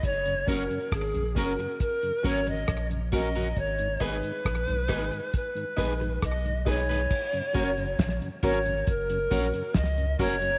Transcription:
<<
  \new Staff \with { instrumentName = "Pan flute" } { \time 4/4 \key fis \major \tempo 4 = 68 cis''8 ais'8 gis'8 ais'8 ais'8 cis''16 dis''8 r16 dis''8 | cis''8 b'4. b'4 dis''8 cis''8~ | cis''4. cis''8 ais'4 dis''8 cis''8 | }
  \new Staff \with { instrumentName = "Upright piano" } { \time 4/4 \key fis \major r8 <cis' fis' ais'>16 r8. <cis' fis' ais'>16 r8. <cis' fis' ais'>16 r8. <cis' fis' ais'>16 r16 | r8 <dis' gis' b'>16 r8. <dis' gis' b'>16 r8. <dis' gis' b'>16 <gis' b'>16 r8 <dis' gis' b'>16 r16 | r8 <fis' ais' cis''>16 r8. <fis' ais' cis''>16 r8. <fis' ais' cis''>16 r8. <fis' ais' cis''>16 <ais' cis''>16 | }
  \new Staff \with { instrumentName = "Clean electric guitar" } { \time 4/4 \key fis \major r8 <cis' fis' ais'>16 r8. <cis' fis' ais'>16 r8. <cis' fis' ais'>16 r8. <cis' fis' ais'>16 <cis' fis' ais'>16 | r8 <dis' gis' b'>16 r8. <dis' gis' b'>16 r8. <dis' gis' b'>16 r8. <dis' gis' b'>16 <dis' gis' b'>16 | r8 <cis' fis' ais'>16 r8. <cis' fis' ais'>16 r8. <cis' fis' ais'>16 r8. <cis' fis' ais'>16 r16 | }
  \new Staff \with { instrumentName = "Tonewheel organ" } { \clef bass \time 4/4 \key fis \major << { r8 <fis ais cis'>8 r8 <fis ais cis'>8 r8 <fis ais cis'>8 r8 <fis ais cis'>8 | r8 <gis b dis'>8 r8 <gis b dis'>8 r8 <gis b dis'>8 r8 <gis b dis'>8 | r8 <fis ais cis'>8 r8 <fis ais cis'>8 r8 <fis ais cis'>8 r8 <fis ais cis'>8 | } \\ { r16 <fis, cis>16 r16 <fis, cis>16 r16 <fis, cis>16 r16 <fis, cis>16 r16 <fis, cis>16 r16 <fis, cis>16 r16 <fis, cis>16 r16 <fis, cis>16 | r16 <gis, dis>16 r16 <gis, dis>16 r16 <gis, dis>16 r16 <gis, dis>16 r16 <gis, dis>16 r16 <gis, dis>16 r16 <gis, dis>16 r16 <gis, dis>16 | r16 <fis, cis>16 r16 <fis, cis>16 r16 <fis, cis>16 r16 <fis, cis>16 r16 <fis, cis>16 r16 <fis, cis>16 r16 <fis, cis>16 r16 <fis, cis>16 | } >> }
  \new Staff \with { instrumentName = "Sub bass" } { \clef bass \time 4/4 \key fis \major fis,,8 fis,,16 r16 gis,,16 ais,,16 fis,,16 r8. gis,,8 ais,,4 | gis,,8 gis,,16 r16 ais,,16 b,,16 gis,,16 r8. ais,,8 b,,4 | r8 fis,,8 ais,,16 r16 gis,,8 fis,,8 ais,,16 r16 cis,8 fis,,8 | }
  \new DrumStaff \with { instrumentName = "Drums" } \drummode { \time 4/4 <hh bd>16 hh16 <hh bd>16 hh16 <hh bd ss>16 hh16 <hh bd>16 hh16 <hh bd>16 hh16 <hh bd>16 hh16 <hh bd ss>16 hh16 <hho bd>16 hh16 | <hh bd>16 hh16 <hh bd>16 hh16 <hh bd ss>16 hh16 <hh bd ss>16 hh16 <hh bd>16 hh16 <hh bd>16 hh16 <hh bd ss>16 hh16 <hho bd>16 hh16 | <cymc bd>16 hh16 <hh bd>16 hh16 <hh bd sn>16 hh16 <hh bd>16 hh16 <hh bd>16 hh16 <hh bd>16 hh16 <hh bd sn>16 hh16 <hho bd>16 hh16 | }
>>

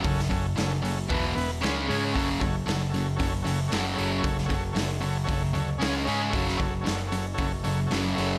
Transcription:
<<
  \new Staff \with { instrumentName = "Transistor combo organ" } { \time 4/4 \key fis \minor \tempo 4 = 114 <cis' fis' a'>8 <cis' fis' a'>8 <cis' fis' a'>8 <cis' fis' a'>8 <b e' b'>8 <b e' b'>8 <cis' gis' cis''>8 <cis' gis' cis''>8 | <fis' a' cis''>8 <fis' a' cis''>8 <fis' a' cis''>8 <fis' a' cis''>8 <fis' a' cis''>8 <fis' a' cis''>8 <fis' a' cis''>8 <fis' a' cis''>8 | <fis' a' cis''>8 <fis' a' cis''>8 <fis' a' cis''>8 <fis' a' cis''>8 <fis' a' cis''>8 <fis' a' cis''>8 <cis' gis' cis''>8 <cis' gis' cis''>8 | <fis' a' cis''>8 <fis' a' cis''>8 <fis' a' cis''>8 <fis' a' cis''>8 <fis' a' cis''>8 <fis' a' cis''>8 <fis' a' cis''>8 <fis' a' cis''>8 | }
  \new Staff \with { instrumentName = "Distorted electric guitar" } { \clef bass \time 4/4 \key fis \minor <fis, cis>8 <fis, cis>8 <fis, cis>8 <fis, cis>8 <e, b, e>8 <e, b,>8 <cis gis cis'>8 <cis gis cis'>8 | <fis, cis fis>8 <fis, cis>8 <fis, cis>8 <fis, cis>8 <fis, cis>8 <fis, cis>8 <fis, cis fis>8 <fis, cis fis>8 | <fis, cis>8 <fis, cis>8 <fis, cis>8 <fis, cis>8 <fis, cis>8 <fis, cis>8 <cis gis cis'>8 <cis gis cis'>8 | <fis, cis fis>8 <fis, cis>8 <fis, cis>8 <fis, cis>8 <fis, cis>8 <fis, cis>8 <fis, cis fis>8 <fis, cis fis>8 | }
  \new Staff \with { instrumentName = "Fingered electric bass" } { \clef bass \time 4/4 \key fis \minor fis,,8 fis,,8 fis,,4 e,,8 e,,8 cis,8 gis,8 | fis,,8 fis,,8 fis,,4 fis,,8 fis,,8 fis,,8 fis,,8 | fis,,8 fis,,8 fis,,4 fis,,8 d,8 cis,8 gis,8 | fis,,8 fis,,8 fis,,4 fis,,8 fis,,8 fis,,8 fis,,8 | }
  \new DrumStaff \with { instrumentName = "Drums" } \drummode { \time 4/4 <hho bd>16 sn16 <hho bd>8 <hho sn>8 hho8 <hho bd>8 hho8 <hho sn>8 hho8 | <hho bd>8 <hho bd>8 <hho sn>8 hho8 <hho bd>8 hho8 <hho sn>8 hho8 | <hho bd>16 sn16 <hho bd>8 <hho sn>8 hho8 <hho bd>8 hho8 <hho sn>8 hho8 | <hho bd>16 sn16 <hho bd>8 <hho sn>8 hho8 <hho bd>8 hho8 <hho sn>8 hho8 | }
>>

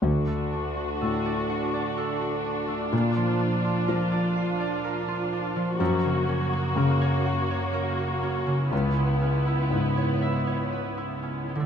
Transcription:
<<
  \new Staff \with { instrumentName = "Harp" } { \time 3/4 \key d \lydian \tempo 4 = 62 d16 a16 d'16 fis'16 a'16 d''16 fis''16 d''16 a'16 fis'16 d'16 a16 | bes,16 f16 d'16 f'16 bes'16 d''16 f''16 d''16 bes'16 f'16 d'16 f16 | fis,16 cis16 cis'16 fis'16 ais'16 cis''16 fis''16 cis''16 ais'16 fis'16 cis'16 cis16 | cis16 gis16 cis'16 e'16 b'16 cis''16 e''16 cis''16 b'16 e'16 cis'16 gis16 | }
  \new Staff \with { instrumentName = "Viola section" } { \time 3/4 \key d \lydian << { fis'2. | f'2. | fis'2. | e'2. | } \\ { d'2.~ | d'2. | ais2. | b2. | } >> }
  \new Staff \with { instrumentName = "Grand piano" } { \clef bass \time 3/4 \key d \lydian d,4 a,2 | bes,4 f2 | fis,4 cis2 | cis,4 gis,2 | }
>>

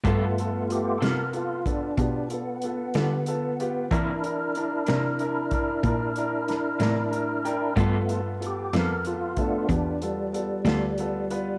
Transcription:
<<
  \new Staff \with { instrumentName = "Grand piano" } { \time 12/8 \key g \mixolydian \tempo 4. = 62 <b f' a'>8 <b f' a'>8 <b f' a'>8 <b f' a'>8 <b f' a'>8 <b f' a'>8 <b f' g'>8 <b f' a'>8 <b f' a'>8 <b f' g'>8 <b f' a'>8 <b f' g'>8 | <d' e' bes'>8 <d' e' bes'>8 <d' e' bes'>8 <d' e' bes'>8 <d' e' bes'>8 <d' e' bes'>8 <d' e' bes'>8 <d' e' bes'>8 <d' e' bes'>8 <d' e' bes'>8 <d' e' bes' e''>8 <d' e' bes' g''>8 | <b f' a'>8 <b f' a'>8 <b f' a'>8 <b f' a'>8 <b f' a'>8 <b f' a'>8 <b f' g'>8 <b f' a'>8 <b f' a'>8 <b f' a'>8 <b f' a'>8 <b f' b'>8 | }
  \new Staff \with { instrumentName = "Tonewheel organ" } { \time 12/8 \key g \mixolydian << { r4 g'8 <a' bes'>8 f'8 d'4 b2~ b8 | r1. | r4 g'8 <a' bes'>8 f'8 d'4 g2~ g8 | } \\ { <a b f'>4. r1 r8 | <d' e' bes'>1. | <a b f'>8 r2 <a b f'>8 r2. | } >> }
  \new Staff \with { instrumentName = "Clean electric guitar" } { \time 12/8 \key g \mixolydian <g b f' a'>8 r4 <g b f' a'>8 r2 r8 <g b f' a'>8 r4 | <c e bes d'>8 r4 <c e bes d'>8 r2 r8 <c e bes d'>8 r4 | <g b f' a'>8 r4 <g b f' a'>8 r2 r8 <g b f' a'>8 r4 | }
  \new Staff \with { instrumentName = "Cello" } { \clef bass \time 12/8 \key g \mixolydian g,4. c4. b,4. d4. | e4. c4. bes,4. a,4. | g,4. f,4. e,4. d,4. | }
  \new DrumStaff \with { instrumentName = "Drums" } \drummode { \time 12/8 <hh bd>8 hh8 hh8 <hh sn>8 hh8 <hh bd>8 <hh bd>8 hh8 hh8 <hh sn>8 hh8 hh8 | <hh bd>8 hh8 hh8 <hh sn>8 hh8 <hh bd>8 <hh bd>8 hh8 <hh sn>8 <hh sn>8 hh8 hh8 | <hh bd>8 hh8 hh8 <hh sn>8 hh8 <hh bd>8 <hh bd>8 hh8 hh8 <hh sn>8 hh8 hh8 | }
>>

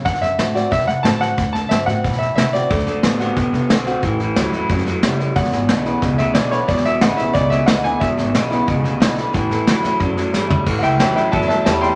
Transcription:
<<
  \new Staff \with { instrumentName = "Upright piano" } { \time 4/4 \key a \mixolydian \tempo 4 = 181 fis''8 e''4 d''8 e''8 fis''8 a''8 fis''8~ | fis''8 a''8 e''8 fis''4 e''8 e''8 d''8~ | d''2.~ d''8 r8 | r1 |
fis''2~ fis''8 e''8 d''8 cis''8 | d''8 e''8 fis''8 e''8 d''8 e''8 fis''8 gis''8 | e''2 r2 | r1 |
r8 <e'' fis'' g''>8 <e'' g''>8 <e'' g''>8 <e'' a''>8 <e'' a''>8 <e'' a''>8 <g'' c'''>8 | }
  \new Staff \with { instrumentName = "Steel-string acoustic guitar" } { \time 4/4 \key a \mixolydian << { r4 <d a c' fis'>8 <c' fis'>8 r4 <d a c' fis'>4 | r4 <d a c' fis'>8 <c' fis'>8 r4 <d a c' fis'>8 <c' fis'>8 | r4 <d a c' fis'>8 <c' fis'>8 r4 <d a c' fis'>8 <c' fis'>8 | r4 <e g cis' e'>8 <cis' e'>8 r2 |
r4 <d gis b e'>8 <b e'>8 r4 <d gis b e'>8 <b e'>8 | r4 <d gis b e'>8 <b e'>8 r4 <d gis b e'>8 <b e'>8 | r4 <d gis b e'>8 <b e'>8 r4 <d gis b e'>8 <b e'>8 | r4 <e g cis' e'>8 <cis' e'>8 r4 <e g cis' e'>8 <cis' e'>8 |
r4 <e g cis' e'>8 <cis' e'>8 r4 <e g cis' e'>8 <cis' e'>8 | } \\ { d2 a,2 | d2 a,2 | d2 a,2 | a,2 g,4 fis,4 |
e,2 b,2 | e,2 b,2 | e,2 b,2 | a,2 e,2 |
a,2 e,2 | } >> }
  \new Staff \with { instrumentName = "Clean electric guitar" } { \clef bass \time 4/4 \key a \mixolydian r1 | r1 | <d a>8 <d a>8 <d b>8 <d b>8 <d b>8 <d b>8 <d c'>8 <d c'>8 | <a, e>8 <a, e>8 <a, fis>8 <a, fis>8 <a, fis>8 <a, fis>8 <a, g>8 <a, g>8 |
<e, b,>8 <e, b,>8 <e, cis>8 <e, cis>8 <e, cis>8 <e, cis>8 <e, d>8 <e, d>8 | <e, b,>8 <e, b,>8 <e, cis>8 <e, cis>8 <e, cis>8 <e, cis>8 <e, d>8 <e, d>8 | <e, b,>8 <e, b,>8 <e, cis>8 <e, cis>8 <e, cis>8 <e, cis>8 <e, d>8 <e, d>8 | <a, e>8 <a, e>8 <a, fis>8 <a, fis>8 <a, fis>8 <a, fis>8 <a, g>8 <a, g>8 |
<a, e>8 <a, e>8 <a, fis>8 <a, fis>8 <a, fis>8 <a, fis>8 <a, g>8 <a, g>8 | }
  \new Staff \with { instrumentName = "Upright bass" } { \clef bass \time 4/4 \key a \mixolydian d,8 fis,8 a,4 b,8 c8 a,4 | d,4 g,8 a,8 b,4 c4 | d,8 fis,8 a,4 b,8 c8 b,,4 | a,,4 d,8 e,8 fis,4 fis,,4 |
e,,8 gis,,8 b,,4 cis,8 d,8 b,,4 | e,,4 a,,8 b,,8 cis,4 d,4 | e,,8 gis,,8 b,,4 cis,8 d,8 b,,4 | a,,4 d,8 e,8 fis,4 g,4 |
a,,8 cis,8 e,4 fis,8 g,8 e,4 | }
  \new DrumStaff \with { instrumentName = "Drums" } \drummode { \time 4/4 <bd sn>16 sn16 sn8 <hhp sn>8 sn8 <bd sn>16 sn16 sn8 <hhp sn>8 sn8 | <bd sn>8 sn8 <hhp sn>8 sn8 <bd sn>16 sn16 sn8 <hhp sn>8 sn8 | <bd sn>16 sn16 sn8 <hhp sn>8 sn8 <bd sn>8 sn8 <hhp sn>8 sn8 | <bd sn>8 sn8 <hhp sn>8 sn8 <bd sn>16 sn16 sn8 <hhp sn>8 sn8 |
<bd sn>16 sn16 sn8 <hhp sn>8 sn8 <bd sn>8 sn8 <hhp sn>8 sn8 | <bd sn>16 sn16 sn8 <hhp sn>8 sn8 <bd sn>8 sn8 <hhp sn>8 sn8 | <bd sn>8 sn8 <hhp sn>8 sn8 <bd sn>8 sn8 <hhp sn>8 sn8 | <bd sn>8 sn8 <hhp sn>8 sn8 <bd sn>8 sn8 <hhp sn>8 tomfh8 |
<cymc bd sn>8 sn8 <hhp sn>8 sn8 <bd sn>16 sn16 sn8 <hhp sn>8 sn8 | }
>>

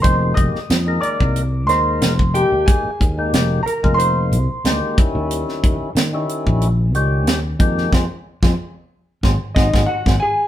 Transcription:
<<
  \new Staff \with { instrumentName = "Grand piano" } { \time 4/4 \key ees \major \tempo 4 = 92 c'''8 ees'''4 d'''4 c'''4 g''8 | aes''4 r8 bes''8 c'''4. r8 | r1 | r2 r8 ees''8 ges''8 aes''8 | }
  \new Staff \with { instrumentName = "Hollow-body jazz guitar" } { \time 4/4 \key ees \major c''8 ees''4 d''4 c''4 g'8 | aes'4 r8 bes'8 c''4. r8 | r1 | r2 r8 ees'8 ges'8 aes'8 | }
  \new Staff \with { instrumentName = "Tonewheel organ" } { \clef bass \time 4/4 \key ees \major <ees aes bes g'>8. r8 <ees aes bes bes'>8. r8 <ees aes bes bes'>8. r16 <ees aes bes g'>8~ | <ees aes bes g'>16 r8 <ees aes bes g'>8. r16 <ees aes bes f'>8. r8 <ees aes bes g'>8 <ees g des' fes'>8~ | <ees g des' fes'>4 r16 <ees g des' fes'>8. r8 <ees g des' g'>8. r16 <ees aes bes g'>8 | <f aes c'>16 r8 <f aes c'>16 r4 <ges aes c'>16 r16 <ges aes c'>16 <ges aes c'>16 r16 <ges aes c'>16 r8 | }
  \new Staff \with { instrumentName = "Fretless electric bass" } { \clef bass \time 4/4 \key ees \major f,,8 f,,16 r16 f,8 r16 c,8. ees,8 f,,8. ees,16 | r8 ees,8 f,,8 r16 f,,8. c,16 r16 d,16 r8 ees,16~ | ees,16 r16 ees,16 r16 ees8 r16 bes,,8. des,8 ees,8 f,8 | f,16 r8 f,16 r4 aes,,16 r16 aes,,16 aes,,16 r16 aes,,16 r8 | }
  \new DrumStaff \with { instrumentName = "Drums" } \drummode { \time 4/4 <hh bd>8 <hh bd>16 sn16 <hh sn>8 hh16 bd16 hh8 <hh sn>8 <hh sn>16 bd16 hh8 | <hh bd>8 <hh bd>8 <hh sn>8 hh16 bd16 hh8 hh8 <hh sn>8 <hh bd>8 | hh16 sn16 <hh bd>8 <hh sn>8 hh16 bd16 hh8 hh8 <hh sn>8 <hh bd>16 sn16 | <bd sn>8. <bd sn>16 r4 <bd sn>8 <bd sn>16 <bd sn>16 r16 <bd sn>8. | }
>>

